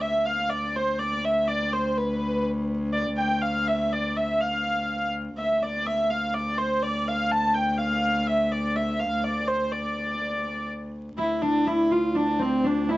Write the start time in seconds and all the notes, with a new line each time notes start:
Already playing: D2
0.01 E5
0.25 F5
0.50 D5
0.76 C5
0.99 D5
1.25 E5
1.47 D5
1.73 C5
1.98 B4
2.93 D5
3.18 G5
3.42 F5
3.67 E5
3.93 D5
4.17 E5
4.40 F5
5.38 D2 E5
5.62 D5
5.86 E5
6.10 F5
6.34 D5
6.58 C5
6.83 D5
7.08 F5
7.31 A5
7.54 G5
7.78 F5
8.27 E5
8.52 D5
8.76 E5
8.99 F5
9.24 D5
9.47 C5
9.72 D5
11.18 D2 E4
11.42 D4
11.67 E4
11.91 F4
12.15 D4
12.39 C4
12.64 D4
12.89 E4